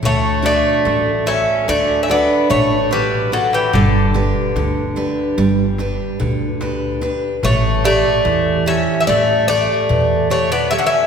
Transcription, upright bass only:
\new Staff \with { instrumentName = "Upright bass" } { \clef bass \time 9/8 \key d \major \tempo 4. = 49 d,4 a,,4 d,4 a,,4. | g,,4 d,4 g,,4 d,4. | a,,4 e,4 a,,4 e,4. | }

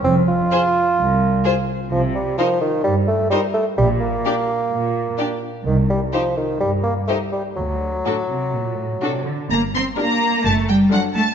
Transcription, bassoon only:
\new Staff \with { instrumentName = "Bassoon" } { \clef bass \time 4/4 \key f \dorian \tempo 4 = 127 c'8 f'2. r8 | \key c \dorian f8 g8 f8 ees8 g8 a8 g8 a8 | g8 bes2. r8 | ees8 g8 f8 ees8 g8 bes8 a8 g8 |
fis2.~ fis8 r8 | r1 | }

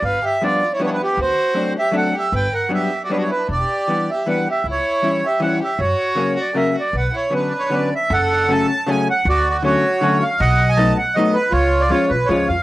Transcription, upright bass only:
\new Staff \with { instrumentName = "Upright bass" } { \clef bass \time 3/4 \key b \minor \tempo 4 = 157 g,,8 r2 r8 | d,8 r2 r8 | g,,8 r2 r8 | e,,8 r2 r8 |
cis,8 r2 r8 | fis,8 r2 r8 | b,,8 r2 r8 | \key fis \minor fis,,2 r4 |
d,2 r4 | b,,2 r4 | cis,4. b,,8 cis,8 eis,8 | }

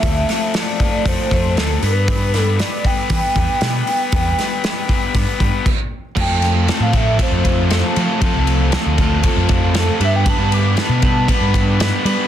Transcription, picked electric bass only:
\new Staff \with { instrumentName = "Picked electric bass" } { \clef bass \time 4/4 \key f \lydian \tempo 4 = 117 d,8 r4. f,16 r16 f,8 d,8 g,8~ | g,4. r8 e16 r16 e,16 r16 b,8 r8 | e,8 r4. g,16 r16 g,16 r4 r16 | f,16 f,4 a,4 f,4~ f,16 f16 r16 |
f16 c,4 d,4 f,16 f,4 g,8~ | g,16 g,4 b,4 g,4~ g,16 g16 r16 | }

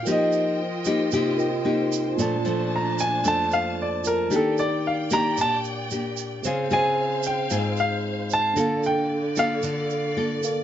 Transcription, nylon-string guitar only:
\new Staff \with { instrumentName = "Nylon-string guitar" } { \time 4/4 \key bes \major \tempo 4 = 113 << { <bes ees' g'>4 r8 <bes ees' g'>8 <bes ees' g'>8 r8 <bes ees' g'>4 | <f a d'>8 <f a d'>4. <f a d'>2 | <bes d' g'>4. <bes d' g'>4. <bes d' g'>4 | <c' f' aes'>8 <c' f' aes'>4. <c' f' aes'>2 |
<bes f' a'>4 r8 <bes f' a'>4. <bes f' a'>8 r8 | } \\ { f2 c2 | bes,2 f,2 | ees2 bes,2 | des2 aes,2 |
d2 d2 | } >> }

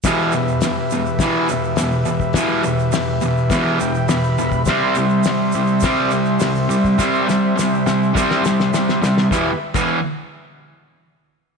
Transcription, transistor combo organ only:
\new Staff \with { instrumentName = "Transistor combo organ" } { \time 4/4 \key e \minor \tempo 4 = 104 << { r1 | r2 r8 g''8 b''4 | r1 | r1 |
r1 | } \\ { <g' b' e''>1~ | <g' b' e''>1 | <g' c'' e''>1~ | <g' c'' e''>1 |
<g' b' e''>8 r2. r8 | } >> }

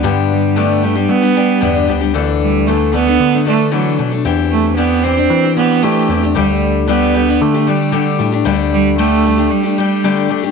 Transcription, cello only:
\new Staff \with { instrumentName = "Cello" } { \time 4/4 \key d \mixolydian \tempo 4 = 114 r8 g8 a8. g16 b4. r8 | r8 g8 a8 b4 a8 fis8. r16 | r8 a8 b8 c'4 b8 a8. r16 | g4 b4 a8 g4 r8 |
r8 g8 a4 g4. r8 | }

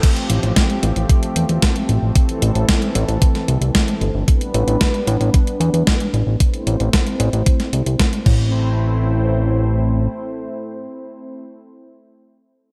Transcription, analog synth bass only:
\new Staff \with { instrumentName = "Analog synth bass" } { \clef bass \time 4/4 \key a \minor \tempo 4 = 113 r8 a,,16 a,,16 r8 a,,16 a,,16 r8 e,16 e,16 r8 a,,16 a,,16 | r8 a,,16 a,,16 r8 a,,16 a,,16 r8 c,16 c,16 r8 g,,16 g,,16 | r8 a,,16 a,,16 r8 a,,16 a,,16 r8 e,16 e,16 r8 a,,16 a,,16 | r8 a,,16 a,,16 r8 a,,16 a,,16 r8 c,16 c,16 r8 a,,8~ |
a,,2. r4 | r1 | }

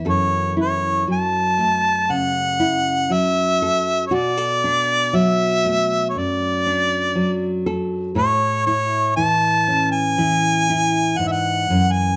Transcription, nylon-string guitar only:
\new Staff \with { instrumentName = "Nylon-string guitar" } { \time 4/4 \key fis \minor \tempo 4 = 59 << { a'8 e'4 a4 e'4 a'8 | fis'16 a'16 d'4 a4 d'4 a'8 | a'8 e'4 cis'4 e'4. | } \\ { <fis, e>4 fis4 cis4 fis4 | b,4 fis4 fis,4 fis4 | a,4 e4 e4 gis,8 fis,8 | } >> }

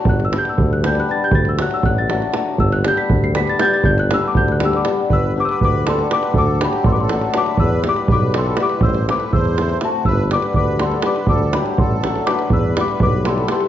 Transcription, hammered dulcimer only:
\new Staff \with { instrumentName = "Hammered dulcimer" } { \time 5/8 \key g \major \tempo 4 = 121 r8 <g b d' g'>8 r8 <g b d' g'>8 <g b d' g'>8 | r8 <fis a d' fis'>8 r8 <fis a d' fis'>8 <fis a d' fis'>8 | r8 <g b d' g'>8 r8 <g b d' g'>8 <g b d' g'>8 | r8 <g b d' g'>8 r8 <g b d' g'>8 <g b d' g'>8 |
r8 <g b d' g'>8 r8 <g b d' g'>8 <g b d' g'>8 | r8 <fis a d' fis'>8 r8 <fis a d' fis'>8 <fis a d' fis'>8 | r8 <g b e' g'>8 r8 <g b e' g'>8 <g b e' g'>8 | r8 <a c' e' a'>8 r8 <a c' e' a'>8 <a c' e' a'>8 |
r8 <g b d' g'>8 r8 <g b d' g'>8 <g b d' g'>8 | r8 <fis a d' fis'>8 r8 <fis a d' fis'>8 <fis a d' fis'>8 | r8 <g b e' g'>8 r8 <g b e' g'>8 <g b e' g'>8 | }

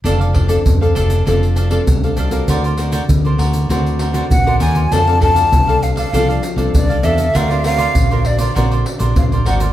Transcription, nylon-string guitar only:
\new Staff \with { instrumentName = "Nylon-string guitar" } { \time 4/4 \key f \major \tempo 4 = 99 << { <c' d' a'>8. <c' d' a'>8 <c' d' a'>8. <c' d' a'>8. <c' d' a'>8 <c' d' a'>8 <c' ges' bes'>16~ | <c' ges' bes'>8 <c' fis' ais'>8. <c' fis' ais'>8. <c' fis' ais'>8. <c' fis' ais'>8 <c' fis' ais'>8. | <c' d' a'>16 <c' d' a'>16 <c' d' a'>8 r16 <c' d' a'>8. <c' d' a'>8 r16 <c' d' a'>8. <c' d' a'>16 r16 | <c' fis' ais'>16 <c' fis' ais'>16 <c' fis' ais'>8 r16 <c' fis' ais'>8. <c' fis' ais'>8 r16 <c' fis' ais'>8. <c' fis' ais'>16 r16 | } \\ { f4 c4 f4 c4 | d4 d4 d4 d4 | f4 r4 f4 c4 | d4 d4 d4 d4 | } >> }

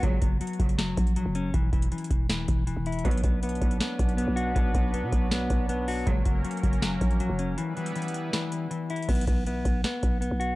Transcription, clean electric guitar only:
\new Staff \with { instrumentName = "Clean electric guitar" } { \time 4/4 \key b \minor \tempo 4 = 159 fis8 fis8 fis4 fis4 fis8 cis'8 | e8 e8 e4 e4 e8 e'8 | b8 b8 b4 b4 b8 fis'8 | b8 b8 b4 b4 b8 fis'8 |
fis8 fis8 fis4 fis4 fis8 cis'8 | e8 e8 e4 e4 e8 e'8 | b8 b8 b4 b4 b8 fis'8 | }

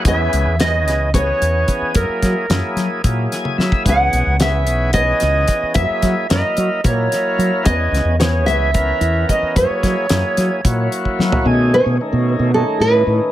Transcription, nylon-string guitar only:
\new Staff \with { instrumentName = "Nylon-string guitar" } { \time 7/8 \key fis \mixolydian \tempo 4 = 110 e''4 dis''4 cis''4. | ais'2 r4. | fis''4 e''4 dis''4. | e''4 dis''4 cis''4. |
dis''4 cis''8 e''4. dis''8 | cis''2~ cis''8 r4 | \key b \mixolydian r8 cis''4. a'8 b'4 | }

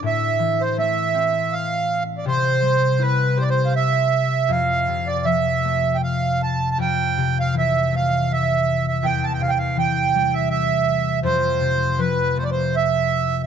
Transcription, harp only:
\new Staff \with { instrumentName = "Harp" } { \clef bass \time 3/4 \key f \lydian \tempo 4 = 81 a,8 e8 a8 c'4. | c8 g8 e'8 g'4. | f,8 c8 f8 a4. | f,8 c8 e8 a4. |
e,8 c8 e8 g4. | f,8 c8 f8 a4. | }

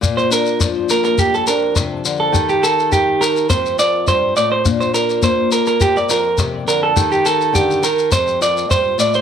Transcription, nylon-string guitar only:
\new Staff \with { instrumentName = "Nylon-string guitar" } { \time 4/4 \key bes \major \tempo 4 = 104 << { bes8 d'4 bes8 g'8 d'4. | g'8 bes'4 g'8 c'8 f'4. | d'8 f'4. bes'8 f'4. | g'8 bes'4. c'8 f'4. | } \\ { bes,4 f4. f,8 c8 d8 | ees4 ees'4 f,4 g,8 a,8 | bes,4 bes4. f,8 c8 d8 | ees4 d8 ees8 f,4 g,8 a,8 | } >> }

